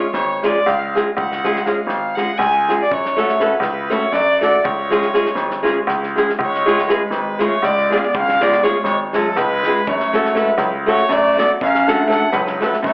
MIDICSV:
0, 0, Header, 1, 6, 480
1, 0, Start_track
1, 0, Tempo, 496689
1, 1143, Time_signature, 7, 3, 24, 8
1, 12497, End_track
2, 0, Start_track
2, 0, Title_t, "Fiddle"
2, 0, Program_c, 0, 110
2, 0, Note_on_c, 0, 73, 76
2, 126, Note_off_c, 0, 73, 0
2, 131, Note_on_c, 0, 73, 83
2, 396, Note_off_c, 0, 73, 0
2, 438, Note_on_c, 0, 74, 81
2, 643, Note_on_c, 0, 77, 89
2, 657, Note_off_c, 0, 74, 0
2, 921, Note_off_c, 0, 77, 0
2, 1150, Note_on_c, 0, 78, 76
2, 1598, Note_on_c, 0, 77, 62
2, 1612, Note_off_c, 0, 78, 0
2, 1796, Note_off_c, 0, 77, 0
2, 1802, Note_on_c, 0, 77, 78
2, 2078, Note_on_c, 0, 78, 94
2, 2093, Note_off_c, 0, 77, 0
2, 2292, Note_on_c, 0, 80, 112
2, 2307, Note_off_c, 0, 78, 0
2, 2585, Note_off_c, 0, 80, 0
2, 2725, Note_on_c, 0, 74, 85
2, 2836, Note_on_c, 0, 73, 87
2, 2851, Note_off_c, 0, 74, 0
2, 3297, Note_on_c, 0, 71, 81
2, 3312, Note_off_c, 0, 73, 0
2, 3477, Note_off_c, 0, 71, 0
2, 3483, Note_on_c, 0, 71, 83
2, 3787, Note_on_c, 0, 73, 95
2, 3801, Note_off_c, 0, 71, 0
2, 3989, Note_on_c, 0, 74, 108
2, 4003, Note_off_c, 0, 73, 0
2, 4254, Note_off_c, 0, 74, 0
2, 4260, Note_on_c, 0, 74, 94
2, 4492, Note_on_c, 0, 73, 76
2, 4507, Note_off_c, 0, 74, 0
2, 5679, Note_off_c, 0, 73, 0
2, 6213, Note_on_c, 0, 73, 95
2, 6681, Note_on_c, 0, 71, 75
2, 6696, Note_off_c, 0, 73, 0
2, 6872, Note_off_c, 0, 71, 0
2, 6878, Note_on_c, 0, 71, 71
2, 7159, Note_on_c, 0, 73, 89
2, 7173, Note_off_c, 0, 71, 0
2, 7385, Note_on_c, 0, 74, 103
2, 7400, Note_off_c, 0, 73, 0
2, 7654, Note_off_c, 0, 74, 0
2, 7660, Note_on_c, 0, 74, 76
2, 7706, Note_on_c, 0, 77, 70
2, 7720, Note_off_c, 0, 74, 0
2, 7776, Note_on_c, 0, 74, 80
2, 7790, Note_off_c, 0, 77, 0
2, 7877, Note_on_c, 0, 77, 104
2, 7892, Note_off_c, 0, 74, 0
2, 8134, Note_on_c, 0, 74, 93
2, 8149, Note_off_c, 0, 77, 0
2, 8343, Note_on_c, 0, 73, 86
2, 8357, Note_off_c, 0, 74, 0
2, 8539, Note_off_c, 0, 73, 0
2, 8545, Note_on_c, 0, 73, 97
2, 8671, Note_off_c, 0, 73, 0
2, 8826, Note_on_c, 0, 69, 85
2, 9053, Note_on_c, 0, 71, 111
2, 9068, Note_off_c, 0, 69, 0
2, 9558, Note_on_c, 0, 73, 82
2, 9572, Note_off_c, 0, 71, 0
2, 10027, Note_on_c, 0, 71, 68
2, 10041, Note_off_c, 0, 73, 0
2, 10219, Note_off_c, 0, 71, 0
2, 10225, Note_on_c, 0, 71, 74
2, 10350, Note_off_c, 0, 71, 0
2, 10516, Note_on_c, 0, 73, 102
2, 10746, Note_on_c, 0, 74, 107
2, 10760, Note_off_c, 0, 73, 0
2, 11001, Note_off_c, 0, 74, 0
2, 11007, Note_on_c, 0, 74, 101
2, 11106, Note_off_c, 0, 74, 0
2, 11236, Note_on_c, 0, 77, 100
2, 11489, Note_on_c, 0, 78, 89
2, 11503, Note_off_c, 0, 77, 0
2, 11690, Note_off_c, 0, 78, 0
2, 11696, Note_on_c, 0, 78, 82
2, 11911, Note_on_c, 0, 71, 76
2, 11926, Note_off_c, 0, 78, 0
2, 12185, Note_off_c, 0, 71, 0
2, 12207, Note_on_c, 0, 71, 83
2, 12301, Note_off_c, 0, 71, 0
2, 12415, Note_on_c, 0, 73, 88
2, 12497, Note_off_c, 0, 73, 0
2, 12497, End_track
3, 0, Start_track
3, 0, Title_t, "Nylon-string guitar"
3, 0, Program_c, 1, 24
3, 419, Note_on_c, 1, 56, 63
3, 428, Note_on_c, 1, 61, 65
3, 432, Note_on_c, 1, 65, 58
3, 434, Note_on_c, 1, 68, 80
3, 548, Note_off_c, 1, 56, 0
3, 553, Note_off_c, 1, 61, 0
3, 553, Note_off_c, 1, 65, 0
3, 555, Note_off_c, 1, 68, 0
3, 919, Note_on_c, 1, 56, 53
3, 924, Note_on_c, 1, 61, 55
3, 931, Note_on_c, 1, 65, 54
3, 935, Note_on_c, 1, 68, 59
3, 1047, Note_off_c, 1, 56, 0
3, 1050, Note_off_c, 1, 61, 0
3, 1053, Note_off_c, 1, 65, 0
3, 1056, Note_off_c, 1, 68, 0
3, 1394, Note_on_c, 1, 56, 76
3, 1400, Note_on_c, 1, 61, 61
3, 1406, Note_on_c, 1, 65, 70
3, 1414, Note_on_c, 1, 68, 69
3, 1517, Note_off_c, 1, 56, 0
3, 1520, Note_off_c, 1, 61, 0
3, 1522, Note_off_c, 1, 65, 0
3, 1527, Note_off_c, 1, 68, 0
3, 1604, Note_on_c, 1, 56, 66
3, 1609, Note_on_c, 1, 61, 62
3, 1616, Note_on_c, 1, 65, 49
3, 1622, Note_on_c, 1, 68, 64
3, 1729, Note_off_c, 1, 56, 0
3, 1731, Note_off_c, 1, 61, 0
3, 1735, Note_off_c, 1, 65, 0
3, 1738, Note_off_c, 1, 68, 0
3, 2095, Note_on_c, 1, 56, 60
3, 2100, Note_on_c, 1, 61, 54
3, 2106, Note_on_c, 1, 65, 56
3, 2117, Note_on_c, 1, 68, 74
3, 2226, Note_off_c, 1, 56, 0
3, 2226, Note_off_c, 1, 61, 0
3, 2231, Note_off_c, 1, 65, 0
3, 2236, Note_off_c, 1, 68, 0
3, 2592, Note_on_c, 1, 56, 55
3, 2599, Note_on_c, 1, 61, 48
3, 2605, Note_on_c, 1, 65, 60
3, 2605, Note_on_c, 1, 68, 66
3, 2724, Note_off_c, 1, 56, 0
3, 2727, Note_off_c, 1, 61, 0
3, 2728, Note_off_c, 1, 65, 0
3, 2730, Note_off_c, 1, 68, 0
3, 3058, Note_on_c, 1, 57, 64
3, 3066, Note_on_c, 1, 61, 59
3, 3071, Note_on_c, 1, 66, 54
3, 3074, Note_on_c, 1, 69, 76
3, 3189, Note_off_c, 1, 57, 0
3, 3193, Note_off_c, 1, 61, 0
3, 3195, Note_off_c, 1, 66, 0
3, 3197, Note_off_c, 1, 69, 0
3, 3284, Note_on_c, 1, 57, 63
3, 3294, Note_on_c, 1, 61, 66
3, 3300, Note_on_c, 1, 69, 69
3, 3301, Note_on_c, 1, 66, 59
3, 3409, Note_off_c, 1, 57, 0
3, 3414, Note_off_c, 1, 61, 0
3, 3416, Note_off_c, 1, 66, 0
3, 3417, Note_off_c, 1, 69, 0
3, 3769, Note_on_c, 1, 57, 75
3, 3776, Note_on_c, 1, 61, 62
3, 3779, Note_on_c, 1, 66, 60
3, 3788, Note_on_c, 1, 69, 69
3, 3902, Note_off_c, 1, 57, 0
3, 3906, Note_off_c, 1, 61, 0
3, 3907, Note_off_c, 1, 66, 0
3, 3912, Note_off_c, 1, 69, 0
3, 4262, Note_on_c, 1, 57, 67
3, 4270, Note_on_c, 1, 61, 55
3, 4275, Note_on_c, 1, 66, 61
3, 4280, Note_on_c, 1, 69, 65
3, 4400, Note_off_c, 1, 57, 0
3, 4402, Note_off_c, 1, 61, 0
3, 4406, Note_off_c, 1, 66, 0
3, 4407, Note_off_c, 1, 69, 0
3, 4738, Note_on_c, 1, 56, 67
3, 4744, Note_on_c, 1, 61, 60
3, 4751, Note_on_c, 1, 65, 63
3, 4756, Note_on_c, 1, 68, 75
3, 4870, Note_off_c, 1, 56, 0
3, 4872, Note_off_c, 1, 61, 0
3, 4876, Note_off_c, 1, 65, 0
3, 4879, Note_off_c, 1, 68, 0
3, 4963, Note_on_c, 1, 56, 61
3, 4967, Note_on_c, 1, 61, 58
3, 4974, Note_on_c, 1, 68, 69
3, 4975, Note_on_c, 1, 65, 55
3, 5090, Note_off_c, 1, 61, 0
3, 5091, Note_off_c, 1, 56, 0
3, 5094, Note_off_c, 1, 68, 0
3, 5096, Note_off_c, 1, 65, 0
3, 5437, Note_on_c, 1, 56, 72
3, 5447, Note_on_c, 1, 61, 77
3, 5455, Note_on_c, 1, 65, 65
3, 5460, Note_on_c, 1, 68, 82
3, 5577, Note_off_c, 1, 56, 0
3, 5583, Note_off_c, 1, 61, 0
3, 5584, Note_off_c, 1, 65, 0
3, 5589, Note_off_c, 1, 68, 0
3, 5951, Note_on_c, 1, 56, 58
3, 5965, Note_on_c, 1, 61, 61
3, 5966, Note_on_c, 1, 65, 51
3, 5971, Note_on_c, 1, 68, 71
3, 6084, Note_off_c, 1, 56, 0
3, 6091, Note_off_c, 1, 65, 0
3, 6092, Note_off_c, 1, 61, 0
3, 6095, Note_off_c, 1, 68, 0
3, 6434, Note_on_c, 1, 56, 73
3, 6441, Note_on_c, 1, 61, 62
3, 6446, Note_on_c, 1, 65, 71
3, 6455, Note_on_c, 1, 68, 76
3, 6558, Note_off_c, 1, 56, 0
3, 6562, Note_off_c, 1, 61, 0
3, 6565, Note_off_c, 1, 65, 0
3, 6569, Note_off_c, 1, 68, 0
3, 6644, Note_on_c, 1, 56, 59
3, 6651, Note_on_c, 1, 61, 59
3, 6662, Note_on_c, 1, 65, 60
3, 6668, Note_on_c, 1, 68, 80
3, 6771, Note_off_c, 1, 56, 0
3, 6773, Note_off_c, 1, 61, 0
3, 6780, Note_off_c, 1, 65, 0
3, 6782, Note_off_c, 1, 68, 0
3, 7142, Note_on_c, 1, 56, 70
3, 7150, Note_on_c, 1, 61, 61
3, 7157, Note_on_c, 1, 65, 62
3, 7163, Note_on_c, 1, 68, 65
3, 7271, Note_off_c, 1, 56, 0
3, 7274, Note_off_c, 1, 61, 0
3, 7278, Note_off_c, 1, 65, 0
3, 7281, Note_off_c, 1, 68, 0
3, 7636, Note_on_c, 1, 56, 59
3, 7646, Note_on_c, 1, 61, 51
3, 7650, Note_on_c, 1, 65, 44
3, 7656, Note_on_c, 1, 68, 69
3, 7768, Note_off_c, 1, 56, 0
3, 7773, Note_off_c, 1, 61, 0
3, 7775, Note_off_c, 1, 65, 0
3, 7776, Note_off_c, 1, 68, 0
3, 8126, Note_on_c, 1, 56, 64
3, 8128, Note_on_c, 1, 61, 71
3, 8131, Note_on_c, 1, 65, 68
3, 8141, Note_on_c, 1, 68, 84
3, 8246, Note_off_c, 1, 56, 0
3, 8246, Note_off_c, 1, 61, 0
3, 8248, Note_off_c, 1, 65, 0
3, 8253, Note_off_c, 1, 68, 0
3, 8341, Note_on_c, 1, 56, 70
3, 8351, Note_on_c, 1, 61, 58
3, 8354, Note_on_c, 1, 65, 59
3, 8359, Note_on_c, 1, 68, 76
3, 8460, Note_off_c, 1, 56, 0
3, 8465, Note_off_c, 1, 61, 0
3, 8467, Note_off_c, 1, 65, 0
3, 8468, Note_off_c, 1, 68, 0
3, 8835, Note_on_c, 1, 56, 72
3, 8841, Note_on_c, 1, 61, 54
3, 8846, Note_on_c, 1, 65, 58
3, 8851, Note_on_c, 1, 68, 72
3, 8957, Note_off_c, 1, 56, 0
3, 8960, Note_off_c, 1, 61, 0
3, 8964, Note_off_c, 1, 65, 0
3, 8964, Note_off_c, 1, 68, 0
3, 9329, Note_on_c, 1, 56, 55
3, 9337, Note_on_c, 1, 61, 49
3, 9343, Note_on_c, 1, 65, 52
3, 9347, Note_on_c, 1, 68, 68
3, 9454, Note_off_c, 1, 56, 0
3, 9458, Note_off_c, 1, 61, 0
3, 9461, Note_off_c, 1, 65, 0
3, 9463, Note_off_c, 1, 68, 0
3, 9789, Note_on_c, 1, 57, 78
3, 9795, Note_on_c, 1, 61, 67
3, 9801, Note_on_c, 1, 66, 65
3, 9808, Note_on_c, 1, 69, 78
3, 9917, Note_off_c, 1, 57, 0
3, 9919, Note_off_c, 1, 61, 0
3, 9923, Note_off_c, 1, 66, 0
3, 9925, Note_off_c, 1, 69, 0
3, 10000, Note_on_c, 1, 57, 70
3, 10005, Note_on_c, 1, 61, 62
3, 10013, Note_on_c, 1, 66, 57
3, 10017, Note_on_c, 1, 69, 76
3, 10129, Note_off_c, 1, 57, 0
3, 10132, Note_off_c, 1, 61, 0
3, 10134, Note_off_c, 1, 66, 0
3, 10138, Note_off_c, 1, 69, 0
3, 10498, Note_on_c, 1, 57, 68
3, 10507, Note_on_c, 1, 61, 56
3, 10512, Note_on_c, 1, 66, 69
3, 10513, Note_on_c, 1, 69, 72
3, 10628, Note_off_c, 1, 57, 0
3, 10633, Note_off_c, 1, 61, 0
3, 10634, Note_off_c, 1, 66, 0
3, 10636, Note_off_c, 1, 69, 0
3, 10988, Note_on_c, 1, 57, 59
3, 10994, Note_on_c, 1, 61, 45
3, 11004, Note_on_c, 1, 66, 55
3, 11008, Note_on_c, 1, 69, 64
3, 11123, Note_off_c, 1, 57, 0
3, 11126, Note_off_c, 1, 61, 0
3, 11131, Note_off_c, 1, 66, 0
3, 11133, Note_off_c, 1, 69, 0
3, 11476, Note_on_c, 1, 57, 67
3, 11481, Note_on_c, 1, 61, 62
3, 11484, Note_on_c, 1, 66, 74
3, 11488, Note_on_c, 1, 69, 86
3, 11600, Note_off_c, 1, 57, 0
3, 11600, Note_off_c, 1, 61, 0
3, 11604, Note_off_c, 1, 66, 0
3, 11604, Note_off_c, 1, 69, 0
3, 11669, Note_on_c, 1, 57, 73
3, 11682, Note_on_c, 1, 61, 56
3, 11687, Note_on_c, 1, 66, 54
3, 11691, Note_on_c, 1, 69, 69
3, 11802, Note_off_c, 1, 57, 0
3, 11809, Note_off_c, 1, 61, 0
3, 11810, Note_off_c, 1, 66, 0
3, 11813, Note_off_c, 1, 69, 0
3, 12180, Note_on_c, 1, 57, 65
3, 12189, Note_on_c, 1, 61, 57
3, 12193, Note_on_c, 1, 66, 66
3, 12198, Note_on_c, 1, 69, 69
3, 12308, Note_off_c, 1, 57, 0
3, 12312, Note_off_c, 1, 61, 0
3, 12314, Note_off_c, 1, 66, 0
3, 12317, Note_off_c, 1, 69, 0
3, 12497, End_track
4, 0, Start_track
4, 0, Title_t, "Clarinet"
4, 0, Program_c, 2, 71
4, 6209, Note_on_c, 2, 56, 72
4, 6696, Note_off_c, 2, 56, 0
4, 6696, Note_on_c, 2, 56, 62
4, 6888, Note_off_c, 2, 56, 0
4, 6917, Note_on_c, 2, 56, 69
4, 7188, Note_on_c, 2, 57, 77
4, 7202, Note_off_c, 2, 56, 0
4, 7407, Note_on_c, 2, 56, 84
4, 7422, Note_off_c, 2, 57, 0
4, 7665, Note_off_c, 2, 56, 0
4, 7669, Note_on_c, 2, 59, 69
4, 7731, Note_on_c, 2, 61, 56
4, 7745, Note_off_c, 2, 59, 0
4, 7780, Note_on_c, 2, 59, 74
4, 7795, Note_off_c, 2, 61, 0
4, 7881, Note_on_c, 2, 61, 79
4, 7896, Note_off_c, 2, 59, 0
4, 8120, Note_on_c, 2, 59, 71
4, 8134, Note_off_c, 2, 61, 0
4, 8358, Note_on_c, 2, 57, 60
4, 8372, Note_off_c, 2, 59, 0
4, 8541, Note_off_c, 2, 57, 0
4, 8546, Note_on_c, 2, 56, 82
4, 8672, Note_off_c, 2, 56, 0
4, 8835, Note_on_c, 2, 54, 72
4, 9065, Note_on_c, 2, 56, 84
4, 9079, Note_off_c, 2, 54, 0
4, 9544, Note_on_c, 2, 57, 75
4, 9559, Note_off_c, 2, 56, 0
4, 10029, Note_on_c, 2, 56, 68
4, 10044, Note_off_c, 2, 57, 0
4, 10216, Note_off_c, 2, 56, 0
4, 10222, Note_on_c, 2, 54, 73
4, 10348, Note_off_c, 2, 54, 0
4, 10479, Note_on_c, 2, 57, 78
4, 10726, Note_off_c, 2, 57, 0
4, 10726, Note_on_c, 2, 57, 94
4, 10997, Note_off_c, 2, 57, 0
4, 11003, Note_on_c, 2, 59, 76
4, 11103, Note_off_c, 2, 59, 0
4, 11235, Note_on_c, 2, 61, 96
4, 11477, Note_on_c, 2, 62, 87
4, 11491, Note_off_c, 2, 61, 0
4, 11674, Note_off_c, 2, 62, 0
4, 11680, Note_on_c, 2, 62, 76
4, 11897, Note_on_c, 2, 54, 74
4, 11911, Note_off_c, 2, 62, 0
4, 12178, Note_off_c, 2, 54, 0
4, 12186, Note_on_c, 2, 56, 60
4, 12284, Note_off_c, 2, 56, 0
4, 12403, Note_on_c, 2, 57, 86
4, 12497, Note_off_c, 2, 57, 0
4, 12497, End_track
5, 0, Start_track
5, 0, Title_t, "Grand piano"
5, 0, Program_c, 3, 0
5, 134, Note_on_c, 3, 32, 78
5, 437, Note_off_c, 3, 32, 0
5, 641, Note_on_c, 3, 37, 75
5, 942, Note_off_c, 3, 37, 0
5, 1128, Note_on_c, 3, 37, 79
5, 1540, Note_off_c, 3, 37, 0
5, 1805, Note_on_c, 3, 32, 77
5, 2110, Note_off_c, 3, 32, 0
5, 2309, Note_on_c, 3, 37, 88
5, 2613, Note_off_c, 3, 37, 0
5, 2815, Note_on_c, 3, 42, 73
5, 3225, Note_off_c, 3, 42, 0
5, 3479, Note_on_c, 3, 37, 82
5, 3786, Note_off_c, 3, 37, 0
5, 3983, Note_on_c, 3, 42, 83
5, 4289, Note_off_c, 3, 42, 0
5, 4487, Note_on_c, 3, 37, 73
5, 4900, Note_off_c, 3, 37, 0
5, 5174, Note_on_c, 3, 32, 78
5, 5477, Note_off_c, 3, 32, 0
5, 5674, Note_on_c, 3, 37, 90
5, 5978, Note_off_c, 3, 37, 0
5, 6173, Note_on_c, 3, 37, 91
5, 6585, Note_off_c, 3, 37, 0
5, 6867, Note_on_c, 3, 32, 77
5, 7167, Note_off_c, 3, 32, 0
5, 7368, Note_on_c, 3, 37, 80
5, 7667, Note_off_c, 3, 37, 0
5, 7874, Note_on_c, 3, 37, 80
5, 8280, Note_off_c, 3, 37, 0
5, 8545, Note_on_c, 3, 32, 77
5, 8845, Note_off_c, 3, 32, 0
5, 9051, Note_on_c, 3, 37, 85
5, 9350, Note_off_c, 3, 37, 0
5, 9545, Note_on_c, 3, 42, 82
5, 9953, Note_off_c, 3, 42, 0
5, 10222, Note_on_c, 3, 37, 90
5, 10523, Note_off_c, 3, 37, 0
5, 10719, Note_on_c, 3, 42, 93
5, 11021, Note_off_c, 3, 42, 0
5, 11224, Note_on_c, 3, 42, 92
5, 11632, Note_off_c, 3, 42, 0
5, 11915, Note_on_c, 3, 37, 77
5, 12211, Note_off_c, 3, 37, 0
5, 12396, Note_on_c, 3, 42, 100
5, 12497, Note_off_c, 3, 42, 0
5, 12497, End_track
6, 0, Start_track
6, 0, Title_t, "Drums"
6, 130, Note_on_c, 9, 38, 28
6, 227, Note_off_c, 9, 38, 0
6, 414, Note_on_c, 9, 38, 23
6, 511, Note_off_c, 9, 38, 0
6, 643, Note_on_c, 9, 38, 20
6, 739, Note_off_c, 9, 38, 0
6, 928, Note_on_c, 9, 38, 23
6, 1025, Note_off_c, 9, 38, 0
6, 1140, Note_on_c, 9, 36, 72
6, 1237, Note_off_c, 9, 36, 0
6, 1274, Note_on_c, 9, 38, 23
6, 1370, Note_off_c, 9, 38, 0
6, 1397, Note_on_c, 9, 38, 22
6, 1494, Note_off_c, 9, 38, 0
6, 1504, Note_on_c, 9, 38, 20
6, 1601, Note_off_c, 9, 38, 0
6, 1608, Note_on_c, 9, 38, 24
6, 1704, Note_off_c, 9, 38, 0
6, 1825, Note_on_c, 9, 38, 24
6, 1921, Note_off_c, 9, 38, 0
6, 2100, Note_on_c, 9, 38, 20
6, 2197, Note_off_c, 9, 38, 0
6, 2325, Note_on_c, 9, 38, 26
6, 2422, Note_off_c, 9, 38, 0
6, 2603, Note_on_c, 9, 38, 26
6, 2699, Note_off_c, 9, 38, 0
6, 2818, Note_on_c, 9, 36, 71
6, 2914, Note_off_c, 9, 36, 0
6, 2952, Note_on_c, 9, 38, 27
6, 3048, Note_off_c, 9, 38, 0
6, 3069, Note_on_c, 9, 38, 24
6, 3166, Note_off_c, 9, 38, 0
6, 3178, Note_on_c, 9, 38, 22
6, 3275, Note_off_c, 9, 38, 0
6, 3285, Note_on_c, 9, 38, 27
6, 3381, Note_off_c, 9, 38, 0
6, 3497, Note_on_c, 9, 38, 29
6, 3594, Note_off_c, 9, 38, 0
6, 3774, Note_on_c, 9, 38, 24
6, 3871, Note_off_c, 9, 38, 0
6, 3996, Note_on_c, 9, 38, 27
6, 4093, Note_off_c, 9, 38, 0
6, 4271, Note_on_c, 9, 38, 29
6, 4368, Note_off_c, 9, 38, 0
6, 4496, Note_on_c, 9, 36, 80
6, 4593, Note_off_c, 9, 36, 0
6, 4749, Note_on_c, 9, 38, 30
6, 4845, Note_off_c, 9, 38, 0
6, 4854, Note_on_c, 9, 38, 24
6, 4950, Note_off_c, 9, 38, 0
6, 4970, Note_on_c, 9, 38, 27
6, 5067, Note_off_c, 9, 38, 0
6, 5079, Note_on_c, 9, 38, 24
6, 5176, Note_off_c, 9, 38, 0
6, 5182, Note_on_c, 9, 38, 26
6, 5279, Note_off_c, 9, 38, 0
6, 5323, Note_on_c, 9, 38, 26
6, 5420, Note_off_c, 9, 38, 0
6, 5467, Note_on_c, 9, 38, 19
6, 5563, Note_off_c, 9, 38, 0
6, 5689, Note_on_c, 9, 38, 27
6, 5786, Note_off_c, 9, 38, 0
6, 5831, Note_on_c, 9, 38, 18
6, 5927, Note_off_c, 9, 38, 0
6, 5964, Note_on_c, 9, 38, 24
6, 6061, Note_off_c, 9, 38, 0
6, 6084, Note_on_c, 9, 38, 21
6, 6181, Note_off_c, 9, 38, 0
6, 6191, Note_on_c, 9, 36, 80
6, 6288, Note_off_c, 9, 36, 0
6, 6326, Note_on_c, 9, 38, 21
6, 6422, Note_off_c, 9, 38, 0
6, 6450, Note_on_c, 9, 38, 26
6, 6547, Note_off_c, 9, 38, 0
6, 6562, Note_on_c, 9, 38, 23
6, 6658, Note_off_c, 9, 38, 0
6, 6660, Note_on_c, 9, 38, 28
6, 6757, Note_off_c, 9, 38, 0
6, 6874, Note_on_c, 9, 38, 25
6, 6971, Note_off_c, 9, 38, 0
6, 7149, Note_on_c, 9, 38, 22
6, 7246, Note_off_c, 9, 38, 0
6, 7376, Note_on_c, 9, 38, 24
6, 7473, Note_off_c, 9, 38, 0
6, 7650, Note_on_c, 9, 38, 25
6, 7747, Note_off_c, 9, 38, 0
6, 7873, Note_on_c, 9, 36, 73
6, 7970, Note_off_c, 9, 36, 0
6, 8007, Note_on_c, 9, 38, 27
6, 8104, Note_off_c, 9, 38, 0
6, 8134, Note_on_c, 9, 38, 29
6, 8230, Note_off_c, 9, 38, 0
6, 8235, Note_on_c, 9, 38, 26
6, 8331, Note_off_c, 9, 38, 0
6, 8344, Note_on_c, 9, 38, 30
6, 8441, Note_off_c, 9, 38, 0
6, 8547, Note_on_c, 9, 38, 27
6, 8644, Note_off_c, 9, 38, 0
6, 8825, Note_on_c, 9, 38, 30
6, 8922, Note_off_c, 9, 38, 0
6, 9046, Note_on_c, 9, 38, 29
6, 9142, Note_off_c, 9, 38, 0
6, 9310, Note_on_c, 9, 38, 30
6, 9406, Note_off_c, 9, 38, 0
6, 9542, Note_on_c, 9, 36, 98
6, 9639, Note_off_c, 9, 36, 0
6, 9665, Note_on_c, 9, 38, 29
6, 9762, Note_off_c, 9, 38, 0
6, 9793, Note_on_c, 9, 38, 36
6, 9890, Note_off_c, 9, 38, 0
6, 9908, Note_on_c, 9, 38, 24
6, 10004, Note_off_c, 9, 38, 0
6, 10010, Note_on_c, 9, 38, 33
6, 10107, Note_off_c, 9, 38, 0
6, 10219, Note_on_c, 9, 38, 33
6, 10316, Note_off_c, 9, 38, 0
6, 10729, Note_on_c, 9, 38, 30
6, 10826, Note_off_c, 9, 38, 0
6, 11004, Note_on_c, 9, 38, 29
6, 11101, Note_off_c, 9, 38, 0
6, 11223, Note_on_c, 9, 36, 70
6, 11319, Note_off_c, 9, 36, 0
6, 11353, Note_on_c, 9, 38, 27
6, 11450, Note_off_c, 9, 38, 0
6, 11485, Note_on_c, 9, 38, 30
6, 11582, Note_off_c, 9, 38, 0
6, 11700, Note_on_c, 9, 38, 33
6, 11796, Note_off_c, 9, 38, 0
6, 11909, Note_on_c, 9, 38, 28
6, 12005, Note_off_c, 9, 38, 0
6, 12050, Note_on_c, 9, 38, 29
6, 12147, Note_off_c, 9, 38, 0
6, 12190, Note_on_c, 9, 38, 26
6, 12287, Note_off_c, 9, 38, 0
6, 12308, Note_on_c, 9, 38, 24
6, 12405, Note_off_c, 9, 38, 0
6, 12411, Note_on_c, 9, 36, 64
6, 12423, Note_on_c, 9, 38, 25
6, 12497, Note_off_c, 9, 36, 0
6, 12497, Note_off_c, 9, 38, 0
6, 12497, End_track
0, 0, End_of_file